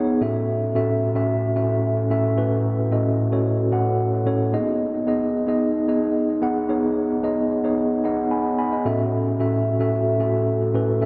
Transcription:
0.00 0.23 B3 medium
0.00 0.23 D#4 medium
0.00 0.23 G#4 medium
0.00 0.23 B4 medium
0.00 0.23 C#5 loud
0.00 0.23 D#5 medium
0.21 0.60 A2 medium
0.21 0.60 C#4 medium
0.21 0.61 F#4 medium
0.21 0.61 A4 medium
0.21 0.61 E5 medium
0.75 1.05 A2 medium
0.75 1.05 C#4 medium
0.75 1.05 F#4 medium
0.75 1.05 A4 medium
0.75 1.05 E5 medium
1.15 1.45 A2 medium
1.15 1.45 C#4 medium
1.15 1.45 F#4 medium
1.15 1.45 A4 medium
1.15 1.45 E5 medium
1.55 1.95 A2 medium
1.55 1.95 C#4 medium
1.55 1.95 F#4 medium
1.55 1.95 A4 medium
1.55 1.96 E5 medium
2.10 2.30 A2 medium
2.10 2.30 C#4 medium
2.10 2.30 F#4 medium
2.10 2.30 A4 medium
2.10 2.30 E5 medium
2.37 2.76 A2 medium
2.37 2.77 C#4 medium
2.37 2.77 F#4 medium
2.37 2.77 A4 medium
2.37 2.77 B4 medium
2.91 3.21 A2 medium
2.91 3.21 C#4 medium
2.91 3.21 F#4 medium
2.91 3.21 A4 medium
2.91 3.21 D#5 medium
3.32 3.61 A2 medium
3.32 3.61 C#4 medium
3.32 3.61 F#4 medium
3.32 3.62 A4 medium
3.32 3.62 C#5 medium
3.72 4.11 A2 medium
3.72 4.11 C#4 medium
3.72 4.11 F#4 medium
3.72 4.12 A4 medium
3.72 4.12 F#5 medium
4.26 4.46 A2 medium
4.26 4.46 C#4 medium
4.26 4.46 F#4 medium
4.26 4.46 A4 medium
4.26 4.46 C#5 loud
4.53 4.60 A#3 medium
4.53 4.93 D#4 medium
4.53 4.93 G#4 medium
4.53 4.93 D#5 loud
4.59 4.96 B3 medium
5.07 5.37 B3 medium
5.07 5.37 D#4 medium
5.07 5.37 G#4 medium
5.07 5.37 D#5 medium
5.47 5.77 B3 medium
5.47 5.77 D#4 medium
5.47 5.78 G#4 medium
5.47 5.78 D#5 medium
5.88 6.27 B3 medium
5.88 6.28 D#4 medium
5.88 6.28 G#4 medium
5.88 6.28 D#5 medium
6.42 6.62 B3 medium
6.42 6.62 D#4 medium
6.42 6.62 G#4 medium
6.42 6.62 F#5 loud
6.69 7.08 B3 medium
6.69 7.09 D#4 medium
6.69 7.09 G#4 medium
6.69 7.09 C#5 medium
7.23 7.53 B3 medium
7.23 7.53 D#4 medium
7.23 7.53 G#4 medium
7.23 7.53 D#5 medium
7.64 7.93 B3 medium
7.64 7.94 D#4 medium
7.64 7.94 G#4 medium
7.64 7.94 C#5 medium
8.04 8.44 B3 medium
8.04 8.44 D#4 medium
8.04 8.44 G#4 medium
8.04 8.32 D#5 medium
8.04 8.30 F#5 medium
8.31 8.57 G#5 medium
8.31 8.57 B5 medium
8.59 8.72 G#5 medium
8.59 8.84 B5 medium
8.72 8.98 D#5 medium
8.85 9.25 A2 medium
8.85 9.25 C#4 medium
8.85 9.25 F#4 medium
8.85 9.25 A4 medium
8.85 9.25 E5 medium
9.39 9.69 A2 medium
9.39 9.69 C#4 medium
9.39 9.69 F#4 medium
9.39 9.70 A4 medium
9.39 9.70 E5 medium
9.80 10.09 A2 medium
9.80 10.10 C#4 medium
9.80 10.10 F#4 medium
9.80 10.10 A4 medium
9.80 10.10 E5 medium
10.20 10.60 A2 medium
10.20 10.60 C#4 medium
10.20 10.60 F#4 medium
10.20 10.60 A4 medium
10.20 10.60 E5 medium
10.74 10.94 A2 medium
10.74 10.94 C#4 medium
10.74 10.94 F#4 medium
10.74 10.95 A4 medium
10.74 10.95 B4 medium
11.01 11.06 A2 medium
11.01 11.06 C#4 medium
11.01 11.06 F#4 medium
11.01 11.06 A4 medium
11.01 11.06 E5 medium

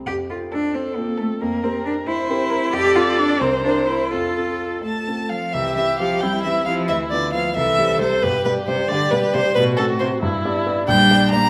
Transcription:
0.00 0.10 C2 soft
0.00 0.10 C4 soft
0.06 0.29 F2 soft
0.06 0.14 G4 medium
0.30 0.93 C4 soft
0.30 0.38 F4 soft
0.30 0.93 F4 soft
0.30 0.93 A4 soft
0.52 0.76 D4 medium
0.52 0.69 A4 soft
0.74 0.97 C4 medium
0.74 1.43 A4 medium
0.96 1.18 A#3 medium
0.96 1.37 C4 soft
0.96 1.38 F4 soft
0.96 1.38 A4 soft
1.18 1.27 A3 medium
1.18 1.35 A4 medium
1.41 1.63 F2 medium
1.41 1.65 A#3 medium
1.41 2.09 A#4 medium
1.63 1.85 C4 medium
1.63 2.25 C4 soft
1.63 2.25 G4 soft
1.63 2.26 A#4 soft
1.85 1.93 D4 medium
1.85 2.01 A#4 soft
2.07 2.75 E4 loud
2.07 2.73 C5 medium
2.30 2.69 C4 soft
2.30 2.69 G4 soft
2.30 2.70 A#4 soft
2.50 2.67 A#4 medium
2.73 2.95 F2 medium
2.73 2.97 G4 loud
2.73 3.42 A4 medium
2.73 3.42 D5 medium
2.95 3.37 C4 soft
2.95 3.19 F4 medium
2.95 3.37 F4 soft
2.95 3.37 A4 soft
3.18 3.42 D4 loud
3.40 3.64 C2 medium
3.40 3.64 C4 medium
3.40 4.11 A#4 medium
3.40 4.12 C5 medium
3.64 4.08 C4 soft
3.64 3.87 D4 medium
3.64 4.08 E4 soft
3.64 4.09 A#4 soft
3.88 4.13 E4 medium
4.12 4.36 F2 soft
4.12 4.82 F4 medium
4.12 4.77 A4 soft
4.12 5.17 A4 soft
4.37 5.03 C4 soft
4.37 5.03 F4 soft
4.37 5.04 A4 soft
4.83 5.32 A3 soft
4.83 5.31 A5 medium
5.08 5.50 C4 soft
5.08 5.50 F4 soft
5.08 5.50 A4 soft
5.29 5.54 F3 medium
5.29 5.55 F5 medium
5.53 5.76 C2 soft
5.53 5.74 E3 medium
5.53 6.23 G4 medium
5.53 5.75 E5 medium
5.75 5.83 E3 medium
5.75 5.97 C4 soft
5.75 5.97 E4 soft
5.75 5.97 G4 soft
5.75 5.97 E5 medium
5.98 6.23 F3 medium
5.98 6.20 C4 soft
5.98 6.20 E4 soft
5.98 6.20 G4 soft
5.98 6.22 F5 medium
6.21 6.44 G3 medium
6.21 6.42 C4 soft
6.21 7.56 E4 medium
6.21 6.42 E4 soft
6.21 6.43 G4 soft
6.21 6.43 G5 medium
6.43 6.65 E3 medium
6.43 6.65 C4 soft
6.43 6.65 E4 soft
6.43 6.65 G4 soft
6.43 6.65 E5 medium
6.65 6.90 F3 medium
6.65 6.87 C4 soft
6.65 6.87 E4 soft
6.65 6.87 G4 soft
6.65 6.73 F5 medium
6.88 7.11 D2 soft
6.88 7.10 E3 medium
6.88 6.96 E5 medium
7.10 7.35 D3 medium
7.10 7.32 B3 soft
7.10 7.32 F4 soft
7.10 7.32 B4 soft
7.10 7.32 D5 medium
7.33 7.54 F3 medium
7.33 7.54 B3 soft
7.33 7.54 F4 soft
7.33 7.54 B4 soft
7.33 7.55 F5 medium
7.55 7.78 C2 medium
7.55 8.02 E3 medium
7.55 8.25 A4 medium
7.55 8.00 E5 medium
7.78 7.99 G3 soft
7.78 7.99 G4 soft
7.78 7.99 C5 soft
8.00 8.22 C3 medium
8.00 8.21 G3 soft
8.00 8.21 G4 soft
8.00 8.24 C5 medium
8.00 8.21 C5 soft
8.22 8.45 G2 soft
8.22 8.31 B2 medium
8.22 8.90 G4 medium
8.22 8.44 B4 medium
8.45 8.53 B2 medium
8.45 8.65 G3 soft
8.45 8.66 G4 soft
8.45 8.53 B4 medium
8.45 8.66 D5 soft
8.67 8.88 C3 medium
8.67 8.88 G3 soft
8.67 8.88 G4 soft
8.67 8.90 C5 medium
8.67 8.88 D5 soft
8.89 9.11 D3 medium
8.89 9.11 G3 soft
8.89 9.56 G4 medium
8.89 9.11 G4 soft
8.89 9.12 D5 medium
8.89 9.11 D5 medium
9.11 9.20 B2 medium
9.11 9.32 G3 soft
9.11 9.33 G4 soft
9.11 9.35 B4 medium
9.11 9.33 D5 soft
9.34 9.42 C3 medium
9.34 9.54 G3 soft
9.34 9.55 G4 soft
9.34 9.55 C5 loud
9.34 9.55 D5 soft
9.55 9.78 A2 medium
9.55 9.79 B2 medium
9.55 10.21 F#4 medium
9.55 9.63 B4 loud
9.77 10.00 A2 medium
9.77 9.99 C4 soft
9.77 9.99 F#4 soft
9.77 9.85 A4 medium
9.77 9.99 C5 soft
9.99 10.08 C3 medium
9.99 10.21 C4 soft
9.99 10.21 F#4 medium
9.99 10.07 C5 medium
9.99 10.21 C5 medium
10.23 10.44 G2 medium
10.23 10.87 E4 medium
10.44 10.64 B3 medium
10.44 10.64 G4 medium
10.44 10.65 D5 medium
10.66 10.86 B3 soft
10.66 10.86 G4 soft
10.66 10.86 D5 medium
10.87 11.09 A#1 medium
10.87 11.29 G3 loud
10.87 11.49 D4 medium
10.87 11.29 G5 loud
11.10 11.30 G3 medium
11.10 11.30 G4 medium
11.10 11.30 D5 medium
11.31 11.49 G3 medium
11.31 11.49 A#3 loud
11.31 11.49 G4 medium
11.31 11.49 D5 medium
11.31 11.49 A#5 loud

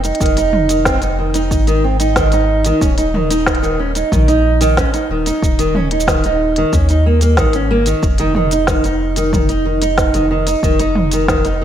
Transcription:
0.00 0.12 F1 medium
0.00 closed hi-hat soft
0.04 0.19 D#4 medium
0.04 shaker medium
0.15 closed hi-hat soft
0.20 1.52 F1 medium
0.20 0.36 D#3 medium
0.20 kick loud
0.20 shaker medium
0.26 closed hi-hat soft
0.37 0.68 D#4 medium
0.37 closed hi-hat soft
0.37 shaker soft
0.53 mid tom medium
0.69 0.84 D#3 medium
0.69 closed hi-hat medium
0.69 shaker medium
0.85 1.01 C4 medium
0.85 kick medium
0.85 snare loud
0.85 shaker medium
1.02 1.17 D#4 medium
1.02 closed hi-hat soft
1.02 shaker soft
1.18 1.33 D#3 medium
1.34 1.66 D#4 medium
1.34 closed hi-hat soft
1.34 shaker medium
1.51 2.73 G#1 medium
1.51 kick loud
1.51 shaker medium
1.67 1.82 D#3 medium
1.67 closed hi-hat soft
1.67 shaker soft
1.84 1.99 C4 medium
2.00 2.15 D#4 medium
2.00 closed hi-hat soft
2.00 shaker medium
2.16 2.31 D#3 medium
2.16 kick loud
2.16 snare medium
2.16 shaker soft
2.32 2.64 D#4 medium
2.32 closed hi-hat soft
2.32 shaker soft
2.65 2.80 D#3 loud
2.65 closed hi-hat medium
2.65 shaker medium
2.81 4.03 D#1 medium
2.81 2.96 C#4 medium
2.81 kick loud
2.81 shaker medium
2.98 3.13 D#4 medium
2.98 closed hi-hat soft
2.98 shaker soft
3.14 3.29 D#3 medium
3.14 mid tom medium
3.31 3.62 D#4 medium
3.31 closed hi-hat soft
3.31 shaker medium
3.46 kick loud
3.46 snare loud
3.46 shaker medium
3.55 closed hi-hat soft
3.62 3.77 D#3 medium
3.62 shaker soft
3.79 3.94 C#4 medium
3.95 4.10 D#4 medium
3.95 closed hi-hat soft
3.95 shaker medium
4.12 4.85 A#1 loud
4.12 4.27 D#3 medium
4.12 kick loud
4.12 mid tom medium
4.12 shaker medium
4.28 4.59 D#4 medium
4.28 closed hi-hat soft
4.28 shaker soft
4.61 4.76 D#3 medium
4.61 closed hi-hat soft
4.61 shaker medium
4.77 4.92 C#4 medium
4.77 kick loud
4.77 snare medium
4.77 shaker medium
4.94 5.08 D#4 medium
4.94 closed hi-hat soft
4.94 shaker soft
5.09 5.31 D#1 medium
5.09 5.25 D#3 medium
5.26 5.57 D#4 medium
5.26 closed hi-hat soft
5.26 shaker medium
5.42 6.64 D#1 medium
5.42 kick loud
5.42 shaker medium
5.59 5.74 D#3 medium
5.59 closed hi-hat soft
5.59 shaker soft
5.75 5.90 C#4 medium
5.75 mid tom medium
5.91 6.06 D#4 medium
5.91 closed hi-hat medium
6.00 shaker medium
6.08 6.23 D#3 medium
6.08 kick loud
6.08 snare medium
6.08 shaker medium
6.24 6.56 D#4 medium
6.24 closed hi-hat soft
6.24 shaker soft
6.56 6.72 D#3 medium
6.56 closed hi-hat soft
6.73 7.39 D#2 medium
6.73 6.88 C#4 medium
6.73 kick loud
6.73 shaker medium
6.89 7.04 D#4 medium
6.89 closed hi-hat soft
6.89 shaker soft
7.06 7.21 A#3 medium
7.21 7.37 A#3 medium
7.21 closed hi-hat soft
7.21 shaker medium
7.37 7.94 G#1 medium
7.37 7.53 D#3 medium
7.37 kick loud
7.37 snare medium
7.37 shaker medium
7.53 7.69 C#4 medium
7.53 closed hi-hat soft
7.53 shaker soft
7.71 7.85 A#3 medium
7.86 8.02 D#3 medium
7.86 closed hi-hat soft
7.86 shaker medium
8.03 10.55 F1 medium
8.03 kick loud
8.03 shaker medium
8.18 8.34 D#3 loud
8.18 closed hi-hat soft
8.18 shaker soft
8.35 8.51 D#3 medium
8.35 mid tom medium
8.51 8.67 D#4 medium
8.51 closed hi-hat soft
8.51 shaker medium
8.67 8.83 D#3 medium
8.67 kick loud
8.67 snare medium
8.67 shaker medium
8.84 9.16 D#4 medium
8.84 closed hi-hat soft
8.84 shaker soft
9.16 9.32 D#3 medium
9.16 closed hi-hat soft
9.16 shaker medium
9.33 9.48 D#3 medium
9.33 kick loud
9.33 mid tom medium
9.33 shaker medium
9.49 9.64 D#4 medium
9.49 closed hi-hat soft
9.49 shaker soft
9.65 9.81 D#3 medium
9.82 10.13 D#4 medium
9.82 closed hi-hat soft
9.82 shaker medium
9.98 kick loud
9.98 snare medium
9.98 shaker soft
10.14 10.30 D#3 medium
10.14 closed hi-hat soft
10.14 shaker soft
10.31 10.46 D#3 medium
10.47 10.62 D#4 medium
10.47 closed hi-hat soft
10.47 shaker medium
10.63 11.64 F1 medium
10.63 10.79 D#3 medium
10.63 kick loud
10.63 shaker medium
10.79 11.11 D#4 medium
10.79 closed hi-hat soft
10.79 shaker soft
10.95 mid tom medium
11.11 11.28 D#3 loud
11.11 closed hi-hat medium
11.11 shaker medium
11.28 11.44 D#3 medium
11.28 kick loud
11.28 snare medium
11.28 shaker medium
11.45 11.60 D#4 medium
11.45 closed hi-hat soft
11.45 shaker soft
11.61 11.64 D#3 medium

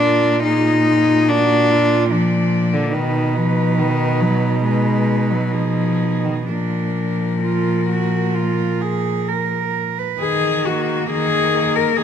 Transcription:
0.00 2.96 A#2 medium
0.00 0.43 D4 medium
0.00 1.28 F4 medium
0.00 0.44 A#4 medium
0.44 1.30 D#4 loud
0.44 0.86 G#4 medium
0.87 1.31 G#4 medium
1.28 2.10 D4 loud
1.28 1.72 F#4 medium
1.28 2.10 A#4 medium
1.71 2.14 F4 medium
2.11 2.75 F3 medium
2.11 2.94 D4 medium
2.11 2.93 D5 medium
2.74 2.95 D3 medium
2.94 6.50 B2 medium
2.94 3.37 D#3 medium
2.94 5.49 D#4 medium
2.94 4.62 B4 medium
3.36 3.80 F3 medium
3.78 4.22 D#3 medium
4.20 4.63 F#3 medium
4.64 5.32 G#3 medium
4.64 5.54 B4 medium
5.30 5.54 F#3 medium
5.52 6.26 F3 medium
5.52 6.46 D#4 medium
5.52 6.48 G#4 medium
6.25 6.46 D#3 medium
6.47 10.00 A#2 medium
6.47 9.70 F3 medium
6.47 7.32 D4 medium
6.47 9.99 A#4 medium
7.42 7.86 F4 medium
7.89 8.36 F#4 medium
8.35 8.83 F4 medium
8.81 9.29 G#4 medium
9.28 10.00 A#4 medium
9.98 10.21 B4 medium
10.20 11.00 D#3 medium
10.20 10.67 G#4 loud
10.65 11.52 A#3 medium
10.65 11.53 A#3 medium
10.65 11.10 F#4 medium
11.10 11.87 D#3 medium
11.10 11.77 G#4 loud
11.54 12.03 A#3 medium
11.76 11.98 A#4 medium
11.97 12.03 D#3 medium
11.97 12.03 G#4 loud

